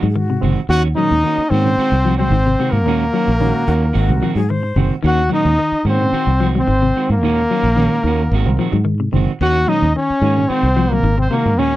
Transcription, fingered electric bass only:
0.03 0.38 G#2 loud
0.43 0.55 F#1 medium
0.69 0.93 D#2 loud
1.11 1.22 D#2 medium
1.38 muted fingered electric bass stroke soft
1.51 1.75 G#2 medium
1.77 muted fingered electric bass stroke soft
1.92 2.27 C2 medium
2.30 2.55 G#1 loud
2.72 2.85 G#2 medium
2.85 3.09 D#2 loud
3.28 3.52 A#1 medium
3.68 3.92 D#2 loud
3.95 4.08 G#1 loud
4.09 4.21 C2 loud
4.35 4.71 G#2 medium
4.76 4.89 F#1 loud
5.04 5.28 D#2 loud
5.45 5.57 D#2 medium
5.72 muted fingered electric bass stroke soft
5.85 6.09 G#2 medium
6.12 muted fingered electric bass stroke soft
6.27 6.62 C2 medium
6.68 6.92 G#1 loud
7.10 7.22 G#2 medium
7.22 7.46 D#2 loud
7.63 7.87 A#1 medium
8.04 8.28 D#2 medium
8.31 8.44 G#1 loud
8.46 8.57 C2 loud
8.73 9.08 G#2 medium
9.14 9.26 F#1 medium
9.41 9.64 D#2 loud
9.82 9.93 D#2 medium
10.10 muted fingered electric bass stroke soft
10.22 10.46 G#2 loud
10.49 muted fingered electric bass stroke soft
10.63 10.99 C2 medium
11.03 11.28 G#1 loud
11.46 11.58 G#2 medium
11.58 11.76 D#2 loud

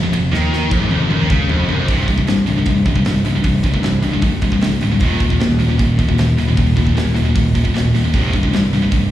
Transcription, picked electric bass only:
0.03 0.11 F1 medium
0.12 0.31 F1 medium
0.32 0.68 D#2 loud
0.71 0.81 F1 loud
0.81 0.90 G#1 medium
0.92 1.10 F1 loud
1.11 1.20 F#1 medium
1.21 1.29 D#2 loud
1.30 1.48 C#2 medium
1.49 1.67 F1 medium
1.69 1.78 F#1 loud
1.78 1.88 F1 medium
1.89 2.06 C1 medium
2.08 2.25 C1 medium
2.28 2.45 C2 medium
2.48 2.65 C1 medium
2.67 2.84 C1 medium
2.86 3.03 C1 medium
3.05 3.23 C1 medium
3.25 3.43 C1 medium
3.44 3.62 C1 medium
3.64 3.81 C1 medium
3.84 4.01 C2 medium
4.04 4.21 C1 medium
4.23 4.40 C1 medium
4.42 4.59 C1 medium
4.62 4.79 C1 medium
4.82 4.99 D1 medium
5.01 5.18 D#1 medium
5.20 5.38 D#1 medium
5.40 5.57 D#2 medium
5.60 5.77 D#1 medium
5.79 5.96 D#1 medium
5.99 6.16 D#1 medium
6.18 6.36 D#1 medium
6.38 6.55 D#1 medium
6.57 6.75 D#1 medium
6.77 6.94 D#1 medium
6.96 7.14 D#2 medium
7.16 7.33 D#1 medium
7.36 7.53 D#1 medium
7.55 7.72 D#1 medium
7.75 7.92 D#1 medium
7.94 8.11 D#1 medium
8.14 8.31 C1 medium
8.34 8.51 C1 medium
8.52 8.69 C2 medium
8.72 8.89 C1 medium
8.92 9.09 C1 medium

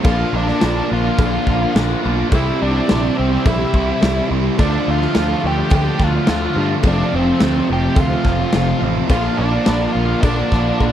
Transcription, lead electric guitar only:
0.04 0.33 F4 loud
0.36 0.47 D4 medium
0.48 0.87 D4 medium
0.93 1.72 F4 medium
2.35 2.60 E4 loud
2.63 3.18 D4 loud
3.18 3.43 C4 medium
3.47 4.27 E4 medium
4.60 4.88 D4 loud
4.90 5.41 F4 loud
5.47 5.74 G4 loud
5.75 6.02 G4 loud
6.04 6.28 F4 loud
6.30 6.68 F4 loud
6.87 7.15 D4 loud
7.16 7.67 C4 loud
7.73 8.00 G4 medium
8.00 8.80 F4 medium
9.11 9.40 F4 loud
9.37 9.91 D4 medium
9.92 10.23 F4 loud
10.21 10.92 D4 medium

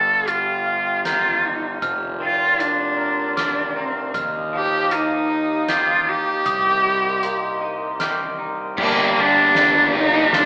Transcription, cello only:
0.00 0.31 A4 medium
0.29 1.06 F4 medium
1.07 1.47 F4 medium
1.46 1.84 D#4 medium
2.24 2.64 F4 medium
2.62 3.37 D4 medium
3.38 3.78 D4 medium
3.76 4.15 C4 medium
4.55 4.96 G4 medium
4.94 5.71 D#4 medium
5.69 6.10 F4 medium
6.09 8.02 G4 medium
8.80 9.21 A#3 medium
9.20 9.95 D4 loud
9.96 10.35 D#4 loud
10.34 10.45 D4 loud

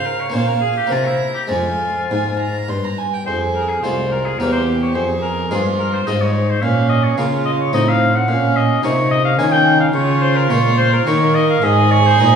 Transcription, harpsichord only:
0.00 0.30 C#3 soft
0.00 0.30 C#4 soft
0.00 0.31 F4 soft
0.30 0.86 A#3 soft
0.30 0.88 C#4 soft
0.30 0.89 F4 soft
0.34 0.88 A#2 soft
0.87 1.46 A#3 soft
0.87 1.47 C4 soft
0.92 1.47 C3 soft
1.47 2.63 G#3 soft
1.47 2.64 C4 soft
1.52 2.07 F2 soft
2.11 2.65 G#2 soft
2.69 3.23 G2 soft
3.28 3.80 F2 medium
3.84 4.36 C2 medium
3.84 4.25 G#3 soft
3.84 4.25 C4 soft
3.84 4.25 F4 soft
4.40 4.92 E2 soft
4.40 4.92 A#3 soft
4.40 4.92 C4 soft
4.40 4.92 G4 soft
4.96 5.48 F2 soft
5.51 6.03 G2 medium
5.51 5.91 G#3 soft
5.51 5.92 C4 soft
5.51 5.92 F4 soft
6.07 6.59 G#2 medium
6.07 6.47 G#3 soft
6.07 6.47 C4 soft
6.07 6.48 F4 soft
6.63 7.14 A#2 medium
7.18 7.69 C#3 medium
7.18 7.58 A#3 soft
7.18 7.58 C#4 soft
7.18 7.58 F4 soft
7.73 8.24 A2 medium
7.73 8.24 C4 soft
7.73 8.25 D#4 soft
7.73 8.25 F4 soft
8.28 8.79 A#2 medium
8.83 9.35 C3 medium
8.83 9.23 A#3 soft
8.83 9.24 C#4 soft
8.83 9.24 F4 medium
9.39 9.91 D#3 medium
9.39 9.79 A#3 medium
9.39 9.79 C#4 medium
9.39 9.80 F4 medium
9.93 10.46 C#3 medium
10.50 11.02 A#2 medium
10.50 10.91 G#3 soft
10.50 10.91 A#3 medium
10.50 10.91 F4 medium
11.06 11.59 D#3 medium
11.06 11.59 A#3 soft
11.06 11.60 D#4 medium
11.62 12.15 G#2 medium
12.18 12.36 A#2 medium
12.18 12.36 G#3 medium
12.18 12.36 C4 medium
12.18 12.36 D#4 medium

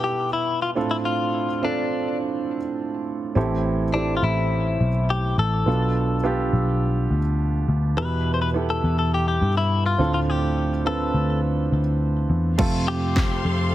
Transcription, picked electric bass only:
3.36 4.19 A1 medium
4.23 4.76 A1 medium
4.81 5.34 B1 medium
5.38 5.65 A1 medium
5.66 6.49 B1 medium
6.53 7.07 B1 medium
7.11 7.64 D2 medium
7.68 7.95 D2 medium
7.97 8.80 E2 medium
8.84 9.38 E2 medium
9.42 9.95 G2 medium
9.99 11.11 D2 medium
11.14 11.68 D2 medium
11.72 12.26 D2 medium
12.30 12.57 E2 medium
12.59 13.41 F2 medium
13.45 13.75 F2 medium

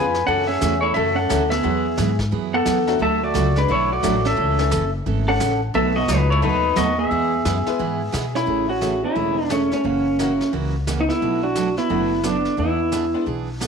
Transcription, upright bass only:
0.00 0.26 F2 medium
0.28 0.61 F#2 medium
0.62 0.95 E2 loud
0.96 1.29 F#2 medium
1.31 1.63 D2 medium
1.64 1.97 E2 medium
1.99 2.32 G#2 medium
2.32 2.65 F#2 medium
2.66 3.00 E2 medium
3.01 3.34 D2 medium
3.35 3.68 C#2 medium
3.70 4.03 B1 medium
4.04 4.37 A1 medium
4.38 4.71 C#2 medium
4.72 5.05 F#1 medium
5.06 5.39 G#1 medium
5.40 5.73 A1 loud
5.75 6.08 B1 medium
6.09 6.42 C#2 loud
6.43 6.76 D#2 medium
6.77 7.10 D#2 medium
7.11 7.44 E2 medium
7.45 7.65 F#2 loud
7.67 muted upright bass stroke soft
7.80 8.13 G#2 medium
8.13 8.47 B2 medium
8.47 9.02 A1 medium
9.16 9.71 E1 medium
9.85 10.40 F#1 medium
10.53 11.08 C#2 medium
11.22 11.77 B1 medium
11.90 12.45 F#1 medium
12.58 13.13 E2 medium
13.27 13.67 B1 medium

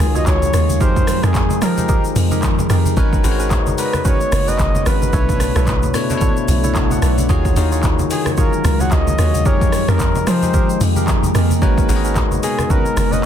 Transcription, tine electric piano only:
0.00 0.83 D#3 loud
0.00 0.81 D#4 medium
0.00 0.83 F4 medium
0.00 0.83 F#4 medium
0.00 0.82 G#4 medium
0.00 0.33 A#4 medium
0.00 0.83 C#5 loud
0.00 0.83 D#5 loud
0.81 1.47 F3 medium
0.81 1.47 D#4 medium
0.81 1.48 G4 medium
0.81 1.48 G#4 medium
0.81 1.48 A#4 medium
1.62 1.74 F3 medium
1.62 1.74 D#4 medium
1.62 1.75 G4 medium
1.62 1.75 G#4 medium
1.62 1.75 A#4 medium
1.77 2.63 F3 medium
1.77 2.63 D#4 medium
1.77 2.63 G4 medium
1.77 2.64 G#4 medium
1.77 2.64 C5 medium
2.97 3.19 G#3 medium
2.97 3.20 D#4 medium
2.97 3.20 F#4 medium
2.97 3.20 A#4 medium
2.97 3.20 B4 medium
2.97 3.20 C#5 loud
3.24 3.69 G#3 medium
3.24 3.69 D#4 medium
3.24 3.69 F#4 medium
3.24 3.69 A#4 medium
3.24 3.69 B4 medium
3.24 3.32 C5 medium
3.32 3.73 C#5 loud
3.78 4.65 G#3 medium
3.78 4.65 D#4 medium
3.78 4.66 F#4 medium
3.78 4.66 A#4 medium
3.78 4.66 B4 medium
3.78 3.86 D5 medium
3.85 4.69 D#5 medium
5.13 5.80 B2 medium
5.13 5.80 A3 medium
5.13 5.80 D4 medium
5.13 5.80 E4 medium
5.13 5.80 C#5 medium
5.94 6.07 B2 medium
5.94 6.07 A3 medium
5.94 6.07 D4 medium
5.94 6.07 E4 medium
5.94 6.07 C#5 loud
6.10 6.96 B2 medium
6.10 6.96 A3 medium
6.10 6.96 D4 medium
6.10 6.96 E4 medium
6.10 6.16 C5 medium
6.17 6.79 C#5 loud
6.76 6.91 F#5 medium
6.76 6.91 A5 medium
6.92 7.02 D5 medium
6.92 7.02 F#5 medium
7.03 7.18 B4 medium
7.03 7.18 D5 medium
7.19 7.44 A4 medium
7.19 7.29 C#5 medium
7.29 7.52 D#3 loud
7.29 7.52 D#4 medium
7.29 7.52 F4 medium
7.29 7.52 F#4 medium
7.29 7.52 G#4 medium
7.29 7.52 C#5 loud
7.56 8.01 D#3 medium
7.56 8.02 D#4 medium
7.56 8.02 F4 medium
7.56 8.02 F#4 medium
7.56 8.02 G#4 medium
7.56 8.02 A#4 loud
8.10 8.98 D#3 medium
8.10 8.98 D#4 medium
8.10 8.98 F4 medium
8.10 8.98 F#4 medium
8.10 8.98 G#4 medium
8.10 8.98 C#5 medium
9.46 10.12 F3 medium
9.46 10.13 D#4 medium
9.46 10.13 G4 medium
9.46 10.13 G#4 medium
9.46 10.13 A#4 medium
10.27 10.39 F3 medium
10.27 10.39 D#4 medium
10.27 10.40 G4 medium
10.27 10.40 G#4 medium
10.27 10.40 A#4 medium
10.43 11.28 F3 medium
10.43 11.28 D#4 medium
10.43 11.28 G4 medium
10.43 11.29 G#4 medium
10.43 11.29 C5 medium
11.62 11.84 G#3 loud
11.62 11.84 D#4 medium
11.62 11.85 F#4 medium
11.62 11.85 A#4 medium
11.62 11.85 B4 medium
11.62 11.85 C#5 loud
11.89 12.34 G#3 medium
11.89 12.34 D#4 medium
11.89 12.34 F#4 medium
11.89 12.34 A#4 medium
11.89 12.34 B4 medium
11.89 11.97 C#5 medium
11.96 12.38 D#5 loud
12.43 13.26 G#3 medium
12.43 13.26 B3 medium
12.43 13.26 D#4 medium
12.43 13.26 F#4 medium
12.43 13.26 A#4 medium
12.43 13.26 D#5 medium

